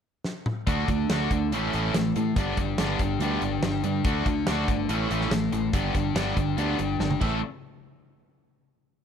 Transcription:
0.24 snare
0.46 mid tom
0.67 fingered electric bass D2, overdriven electric guitar D3 A3 D4, distorted electric guitar D3 D4 F#4, kick, closed hi-hat
0.88 fingered electric bass D2, overdriven electric guitar D3 A3, distorted electric guitar D3 D4, kick, closed hi-hat
1.10 fingered electric bass D2, distorted electric guitar D3 D4 F#4, overdriven electric guitar D3 A3 D4, snare, closed hi-hat
1.31 fingered electric bass D2, distorted electric guitar D3 D4, overdriven electric guitar D3 A3, kick, closed hi-hat
1.52 fingered electric bass A1, distorted electric guitar A2 A3 C#4, overdriven electric guitar A2 E3 A3, closed hi-hat
1.73 fingered electric bass A1, distorted electric guitar A2 A3 C#4, overdriven electric guitar A2 E3 A3, closed hi-hat
1.94 fingered electric bass A1, distorted electric guitar A2 A3, overdriven electric guitar A2 E3, snare, closed hi-hat
2.16 distorted electric guitar A2 A3, fingered electric bass A2, overdriven electric guitar A2 E3, closed hi-hat
2.36 fingered electric bass G1, overdriven electric guitar G2 D3 G3, distorted electric guitar G3 B3 D4, kick, closed hi-hat
2.57 fingered electric bass G1, overdriven electric guitar G2 D3, distorted electric guitar G3 D4, kick, closed hi-hat
2.78 fingered electric bass G1, overdriven electric guitar G2 D3 G3, distorted electric guitar G3 B3 D4, snare, closed hi-hat
2.99 fingered electric bass G1, overdriven electric guitar G2 D3, distorted electric guitar G3 D4, kick, closed hi-hat
3.20 fingered electric bass D2, overdriven electric guitar G2 D3 G3, distorted electric guitar G3 B3 D4, closed hi-hat
3.42 fingered electric bass G1, overdriven electric guitar G2 D3, distorted electric guitar G3 D4, closed hi-hat
3.63 fingered electric bass G1, overdriven electric guitar G2 D3, distorted electric guitar G3 D4, snare, closed hi-hat
3.83 fingered electric bass G2, overdriven electric guitar G2 D3, distorted electric guitar G3 D4, closed hi-hat
4.04 fingered electric bass D2, distorted electric guitar D3 D4 F#4, overdriven electric guitar D3 A3 D4, kick, closed hi-hat
4.26 fingered electric bass D2, overdriven electric guitar D3 A3, distorted electric guitar D3 D4, kick, closed hi-hat
4.47 fingered electric bass D2, overdriven electric guitar D3 A3 D4, distorted electric guitar D3 D4 F#4, snare, closed hi-hat
4.68 fingered electric bass G1, overdriven electric guitar D3 A3, distorted electric guitar D3 D4, kick, closed hi-hat
4.89 fingered electric bass A1, overdriven electric guitar A2 E3 A3, distorted electric guitar A2 A3 C#4, closed hi-hat
5.10 fingered electric bass A1, overdriven electric guitar A2 E3 A3, distorted electric guitar A2 A3 C#4, closed hi-hat
5.21 snare
5.31 fingered electric bass A1, overdriven electric guitar A2 E3, distorted electric guitar A2 A3, snare, closed hi-hat
5.52 fingered electric bass A1, distorted electric guitar A2 A3, overdriven electric guitar A2 E3, closed hi-hat
5.73 fingered electric bass G1, overdriven electric guitar G2 D3 G3, distorted electric guitar G3 B3 D4, kick, closed hi-hat
5.95 fingered electric bass G1, overdriven electric guitar G2 D3, distorted electric guitar G3 D4, kick, closed hi-hat
6.15 fingered electric bass G1, overdriven electric guitar G2 D3 G3, distorted electric guitar G3 B3 D4, snare, closed hi-hat
6.37 fingered electric bass G1, overdriven electric guitar G2 D3, distorted electric guitar G3 D4, kick, closed hi-hat
6.57 fingered electric bass D2, overdriven electric guitar G2 D3 G3, distorted electric guitar G3 B3 D4, closed hi-hat
6.79 fingered electric bass G1, overdriven electric guitar G2 D3, distorted electric guitar G3 D4, closed hi-hat
7.00 fingered electric bass G1, overdriven electric guitar G2 D3, distorted electric guitar G3 D4, snare
7.11 high tom
7.20 fingered electric bass A1, overdriven electric guitar A2 E3 A3, distorted electric guitar A2 A3 C#4 E4 A4, kick, crash

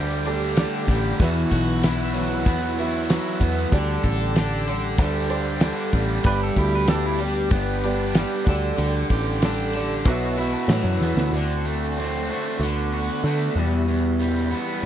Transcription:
Already playing: picked electric bass D2, twelve-string acoustic guitar D3 A3 D4 G4, overdriven electric guitar D3 G3 D4 A4, tonewheel organ A4 D5 G5 D6
0.25 twelve-string acoustic guitar A3 D4 G4, grand piano G4 A4 D5, ride
0.57 twelve-string acoustic guitar D3 A3 D4 G4, snare, ride
0.88 picked electric bass A1, overdriven electric guitar G3, kick, ride
1.19 picked electric bass E2, twelve-string acoustic guitar E2 B2 E3 B3 E4 F#4, grand piano F#4 B4 E5, tonewheel organ B4 E5 F#5 E6, kick, crash
1.51 picked electric bass B1, overdriven electric guitar F#4, kick, ride
1.83 twelve-string acoustic guitar E3 B3 E4 F#4, snare, ride
2.13 twelve-string acoustic guitar E3 B3 E4 F#4, overdriven electric guitar F#3, ride
2.46 picked electric bass E2, twelve-string acoustic guitar E3 B3 E4 F#4, kick, ride
2.78 twelve-string acoustic guitar E3 B3 E4 F#4, grand piano F#4 B4 E5, ride
3.10 twelve-string acoustic guitar E3 B3 E4 F#4, overdriven electric guitar F#3, snare, ride
3.40 picked electric bass E2, overdriven electric guitar B3, kick, ride
3.72 picked electric bass D2, twelve-string acoustic guitar D3 G3 D4 A4, grand piano G4 A4 D5, tonewheel organ A4 D5 G5 D6, kick, ride
4.04 picked electric bass A1, overdriven electric guitar A4, kick, ride
4.35 twelve-string acoustic guitar D3, overdriven electric guitar D4, snare, ride
4.39 twelve-string acoustic guitar G3 D4 A4
4.67 overdriven electric guitar D3, twelve-string acoustic guitar G3 D4 A4, ride
4.98 picked electric bass D2, twelve-string acoustic guitar D3 G3, kick, ride
5.03 twelve-string acoustic guitar D4 A4
5.30 twelve-string acoustic guitar G3 D4 A4, grand piano G4 A4 C5, ride
5.60 twelve-string acoustic guitar D3 G3 D4, snare, ride
5.64 twelve-string acoustic guitar A4
5.93 picked electric bass A1, overdriven electric guitar G3, kick, ride
6.09 snare
6.24 picked electric bass G1, twelve-string acoustic guitar G2 D3 G3 B3 D4 G4, grand piano G4 B4 D5, tonewheel organ B4, pedal steel guitar B4, kick, ride
6.43 pedal steel guitar A4
6.56 picked electric bass D2, pedal steel guitar E4, overdriven electric guitar G4, kick, ride
6.75 pedal steel guitar B4
6.87 twelve-string acoustic guitar G3 B3 D4 G4, pedal steel guitar A4, snare, ride
7.06 pedal steel guitar E4
7.18 twelve-string acoustic guitar B3 D4 G4, pedal steel guitar G4, ride
7.22 twelve-string acoustic guitar G3
7.50 picked electric bass G1, twelve-string acoustic guitar G3 B3 D4 G4, kick, ride
7.83 twelve-string acoustic guitar G3 B3 D4 G4, grand piano G4 B4 D5, ride
8.15 twelve-string acoustic guitar G3 B3 D4 G4, snare, ride
8.47 picked electric bass D2, twelve-string acoustic guitar D3 G3 D4 A4, grand piano G4 A4 D5, tonewheel organ A4, kick, ride
8.78 picked electric bass D2, overdriven electric guitar D3, ride
9.10 picked electric bass A1, overdriven electric guitar G4, kick, ride
9.42 twelve-string acoustic guitar D3 G3 D4 A4, snare, ride
9.73 overdriven electric guitar D3, twelve-string acoustic guitar G3 D4 A4, ride
10.05 picked electric bass B1, overdriven electric guitar B2, twelve-string acoustic guitar F#3 B3 E4, grand piano F#4 B4 E5, tonewheel organ B4 E5 F#5 E6, kick, ride
10.09 twelve-string acoustic guitar F#4
10.37 grand piano F#4 B4 E5 B5, twelve-string acoustic guitar F#4, ride
10.42 twelve-string acoustic guitar B3 E4
10.53 grand piano A5
10.68 picked electric bass A2, overdriven electric guitar E3, twelve-string acoustic guitar F#3, grand piano F#5, snare, ride
10.72 twelve-string acoustic guitar B3 E4 F#4
10.84 picked electric bass F#2, grand piano E5
11.00 picked electric bass E2, overdriven electric guitar B3, snare
11.16 picked electric bass D2, snare
11.32 picked electric bass D2, twelve-string acoustic guitar D3, tonewheel organ A4 D5 F#5 C6
11.36 twelve-string acoustic guitar A3 C4 F#4
11.66 overdriven electric guitar A3
11.97 twelve-string acoustic guitar D3 A3 C4 F#4
12.31 twelve-string acoustic guitar A3 C4 F#4
12.59 picked electric bass D2, twelve-string acoustic guitar D3 A3 B3 F#4, tonewheel organ A4 F#5 B5
12.94 overdriven electric guitar F#4
13.24 picked electric bass D3, twelve-string acoustic guitar D3 A3 B3 F#4
13.55 picked electric bass E2, twelve-string acoustic guitar E2 B2 E3 G3 B3 F#4, tonewheel organ G3 E5
13.88 overdriven electric guitar E2
14.20 overdriven electric guitar G3
14.51 twelve-string acoustic guitar E3 G3 B3 F#4
14.82 twelve-string acoustic guitar E4

